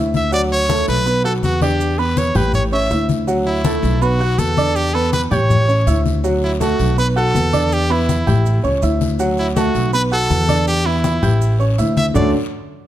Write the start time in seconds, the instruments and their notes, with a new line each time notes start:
Already playing: upright bass D2, grand piano E4 E5 E6
0.14 trumpet E5, high conga, short guiro, maracas
0.32 grand piano F#3 F#4 F#5, trumpet D5, long guiro, maracas
0.51 trumpet C#5, high conga, maracas
0.69 grand piano A3 A4 A5, high conga, short guiro, maracas
0.88 upright bass B1, trumpet B4, high conga, short guiro, maracas
1.06 grand piano B3 B4 B5, high conga, long guiro, maracas
1.24 grand piano F#4 F#5 F#6, trumpet A4, high conga, maracas
1.43 upright bass E2, trumpet F#4, high conga, short guiro, maracas
1.61 grand piano D4 D5 D6, trumpet G4, high conga, short guiro, maracas
1.80 high conga, long guiro, maracas
1.98 grand piano B3 B4 B5, trumpet B4, high conga, maracas
2.17 trumpet C#5, high conga, short guiro, maracas
2.35 upright bass A1, grand piano G4 G5 G6, trumpet B4, high conga, low conga, short guiro, maracas
2.54 trumpet C#5, high conga, low conga, long guiro, maracas
2.72 grand piano C#4 C#5 C#6, trumpet E5, high conga, maracas
2.90 upright bass D2, grand piano E4 E5 E6, high conga, short guiro, maracas
3.09 high conga, short guiro, maracas
3.27 grand piano F#3 F#4 F#5, high conga, long guiro, maracas
3.46 trumpet E4, high conga, maracas
3.64 grand piano A3 A4 A5, high conga, short guiro, maracas
3.83 upright bass B1, high conga, short guiro, maracas
4.01 grand piano B3 B4 B5, trumpet F#4, high conga, long guiro, maracas
4.20 grand piano F#4 F#5 F#6, high conga, maracas
4.38 upright bass E2, trumpet A4, high conga, short guiro, maracas
4.57 grand piano D4 D5 D6, high conga, short guiro, maracas
4.75 trumpet G4, high conga, long guiro, maracas
4.94 grand piano B3 B4 B5, trumpet A4, high conga, maracas
5.13 trumpet B4, high conga, short guiro, maracas
5.31 upright bass A1, grand piano G4 G5 G6, trumpet C#5, high conga, low conga, short guiro, maracas
5.50 high conga, low conga, long guiro, maracas
5.68 grand piano C#4 C#5 C#6, high conga, maracas
5.86 upright bass D2, grand piano E4 E5 E6, high conga, short guiro, maracas
6.06 high conga, short guiro, maracas
6.24 grand piano F#3 F#4 F#5, long guiro, maracas
6.43 trumpet E4, high conga, maracas
6.60 grand piano A3 A4 A5, trumpet F#4, high conga, short guiro, maracas
6.79 upright bass B1, high conga, short guiro, maracas
6.98 grand piano B3 B4 B5, trumpet B4, long guiro, maracas
7.16 grand piano F#4 F#5 F#6, trumpet A4, high conga, maracas
7.35 upright bass E2, high conga, short guiro, maracas
7.53 grand piano D4 D5 D6, high conga, short guiro, maracas
7.72 trumpet G4, high conga, long guiro, maracas
7.90 grand piano B3 B4 B5, trumpet E4, high conga, maracas
8.09 high conga, short guiro, maracas
8.27 upright bass A1, grand piano G4 G5 G6, high conga, low conga, short guiro, maracas
8.46 high conga, long guiro, maracas
8.63 upright bass C#2, grand piano C#4 C#5 C#6, high conga, maracas
8.82 upright bass D2, grand piano E4 E5 E6, high conga, short guiro, maracas
9.01 high conga, short guiro, maracas
9.19 grand piano F#3 F#4 F#5, long guiro, maracas
9.38 trumpet E4, high conga, maracas
9.56 grand piano A3 A4 A5, trumpet F#4, high conga, short guiro, maracas
9.75 upright bass B1, high conga, short guiro, maracas
9.93 grand piano B3 B4 B5, trumpet B4, high conga, long guiro, maracas
10.11 grand piano F#4 F#5 F#6, trumpet A4, high conga, maracas
10.30 upright bass E2, high conga, short guiro, maracas
10.48 grand piano D4 D5 D6, high conga, short guiro, maracas
10.67 trumpet G4, high conga, long guiro, maracas
10.85 grand piano B3 B4 B5, trumpet E4, high conga, maracas
11.04 high conga, short guiro, maracas
11.22 upright bass A1, grand piano G4 G5 G6, high conga, low conga, short guiro, maracas
11.41 high conga, long guiro, maracas
11.59 grand piano C#4 C#5 C#6, high conga, maracas
11.78 upright bass D2, grand piano E4 E5 E6, high conga, short guiro, maracas
11.97 trumpet E5, high conga, short guiro, maracas
12.14 upright bass D2, grand piano D3 A3 C#4 D4 F#4 A4, trumpet D5, low conga, long guiro, maracas